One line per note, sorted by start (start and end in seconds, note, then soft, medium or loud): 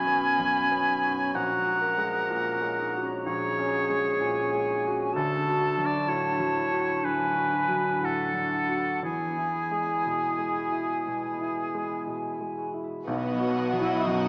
0.00 0.39 F#2 soft
0.00 1.38 B2 soft
0.00 3.34 F#3 soft
0.00 0.07 B3 soft
0.00 0.13 B3 soft
0.00 0.61 C#4 soft
0.00 1.33 C#4 soft
0.00 0.37 F#4 soft
0.00 1.03 F#4 soft
0.00 0.44 B4 soft
0.00 1.37 G#5 medium
0.00 1.32 B5 medium
0.07 0.58 B3 soft
0.15 1.38 B3 soft
0.38 0.90 F#2 soft
0.38 1.82 F#4 soft
0.62 1.09 C#4 soft
0.71 1.22 B3 soft
0.87 1.28 D#4 soft
1.03 1.35 F#4 soft
1.11 2.53 C#4 soft
1.33 3.21 A#1 soft
1.33 3.25 A#2 medium
1.33 1.81 F#4 medium
1.33 3.09 F#5 medium
1.33 3.89 A#5 medium
1.58 2.05 G#3 soft
1.67 2.17 F#4 soft
1.81 2.30 F#4 soft
1.81 2.95 A#4 medium
1.98 2.49 G#3 soft
2.06 3.49 G#3 soft
2.30 2.81 A#2 soft
2.30 3.72 F#4 soft
2.54 3.01 C#4 soft
2.62 3.13 G#3 soft
2.78 3.19 D#4 soft
2.94 3.45 F#4 soft
3.02 4.42 C#4 soft
3.25 5.11 A#1 soft
3.25 5.19 A#2 soft
3.25 5.10 G#4 soft
3.25 4.85 C#5 medium
3.50 3.95 G#3 soft
3.58 4.09 C#4 soft
3.73 4.19 F#4 soft
3.90 4.40 G#3 soft
3.96 5.18 G#3 soft
4.19 4.71 A#2 soft
4.19 5.59 F#4 soft
4.19 5.15 G#5 soft
4.43 4.89 C#4 soft
4.53 5.03 G#3 soft
4.67 5.07 D#4 soft
4.86 5.16 F#4 soft
4.90 5.18 C#4 soft
5.13 7.02 D2 medium
5.13 9.04 D3 medium
5.13 6.10 F#4 soft
5.13 5.87 A4 medium
5.13 7.06 A5 medium
5.38 5.83 D4 soft
5.47 5.97 F#4 soft
5.61 6.07 F#4 soft
5.77 6.28 F#3 soft
5.84 6.32 D4 soft
5.84 6.10 D5 medium
6.08 6.60 A2 soft
6.08 7.05 E4 soft
6.08 6.79 F#4 soft
6.08 7.06 C#5 medium
6.33 7.28 D4 soft
6.39 6.91 F#3 soft
6.56 6.97 E4 soft
6.71 7.24 F#4 soft
6.80 7.52 F#4 soft
7.03 7.56 A2 soft
7.03 9.08 F#3 soft
7.03 7.52 D4 soft
7.03 8.06 B4 medium
7.03 8.03 G#5 medium
7.29 7.77 D4 soft
7.36 7.89 F#4 soft
7.52 9.00 D4 soft
7.52 8.02 F#4 soft
7.68 8.22 F#3 soft
7.78 8.26 D4 soft
8.01 8.55 A2 soft
8.01 8.78 F#4 soft
8.01 8.52 F#5 soft
8.05 9.03 A4 medium
8.27 9.08 D4 soft
8.33 8.89 F#3 soft
8.52 8.96 E4 soft
8.52 9.03 F#5 medium
8.68 9.03 F#4 soft
8.79 9.09 F#4 soft
9.03 11.02 E2 soft
9.03 12.95 E3 soft
9.03 12.70 E4 soft
9.03 12.03 G#4 medium
9.03 12.71 G#5 soft
9.29 9.79 B3 soft
9.37 9.92 E4 soft
9.55 10.05 G#4 soft
9.71 10.26 G#3 soft
9.80 11.31 B3 soft
10.05 10.60 B2 soft
10.05 11.56 G#4 soft
10.31 10.80 E4 soft
10.38 10.93 G#3 soft
10.57 11.00 F#4 soft
10.72 11.26 E4 soft
10.82 12.33 E4 soft
11.07 11.61 B2 soft
11.07 13.12 G#3 soft
11.32 11.82 B3 soft
11.40 11.94 E4 soft
11.57 12.07 G#4 soft
11.75 12.28 G#3 soft
11.83 14.28 B3 soft
12.07 12.61 B2 soft
12.07 13.12 G#4 soft
12.34 12.83 E4 soft
12.40 12.94 G#3 soft
12.58 13.00 F#4 soft
12.74 13.07 E4 soft
12.84 13.12 E4 soft
13.06 14.28 B1 medium
13.06 14.28 B2 medium
13.06 13.77 B3 medium
13.06 14.28 F#4 medium
13.06 14.28 D#5 medium
13.06 14.28 F#5 medium
13.32 13.80 F#3 soft
13.39 13.92 F#4 soft
13.57 14.04 F#4 soft
13.73 14.25 F#3 soft
13.80 14.28 F#3 soft
13.80 14.05 E4 medium
14.05 14.28 F#2 soft
14.05 14.28 D#4 medium
14.05 14.28 F#4 soft